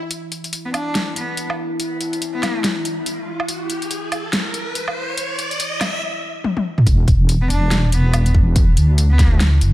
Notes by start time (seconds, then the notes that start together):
Already playing: swell
0.10 E4, closed hi-hat, riser
0.32 closed hi-hat
0.44 closed hi-hat
0.53 closed hi-hat
0.65 B3
0.73 D4, closed hi-hat, low woodblock
0.95 snare, closed hi-hat
1.16 B3, closed hi-hat
1.37 closed hi-hat
1.50 low woodblock
1.80 closed hi-hat
2.01 closed hi-hat
2.13 closed hi-hat
2.22 closed hi-hat
2.34 B3
2.43 snare, closed hi-hat, low woodblock
2.64 snare, closed hi-hat
2.85 closed hi-hat
3.06 closed hi-hat
3.40 low woodblock
3.48 closed hi-hat
3.70 closed hi-hat
3.82 closed hi-hat
3.91 closed hi-hat
4.12 closed hi-hat, low woodblock
4.33 snare, closed hi-hat
4.54 closed hi-hat
4.75 closed hi-hat
4.88 low woodblock
5.17 closed hi-hat
5.39 closed hi-hat
5.51 closed hi-hat
5.60 closed hi-hat
5.81 snare, closed hi-hat, low woodblock
6.44 high tom
6.57 high tom
6.78 mid tom
6.86 E1 E4, kick, closed hi-hat
7.08 kick, closed hi-hat
7.29 closed hi-hat
7.41 B3
7.50 E1 D4, closed hi-hat
7.71 snare, closed hi-hat
7.92 B3, closed hi-hat
8.14 closed hi-hat, low woodblock
8.26 closed hi-hat
8.35 kick
8.56 kick, closed hi-hat
8.77 D2, closed hi-hat
8.98 closed hi-hat
9.11 B3
9.19 kick, snare, closed hi-hat
9.40 snare, closed hi-hat
9.61 F#1, closed hi-hat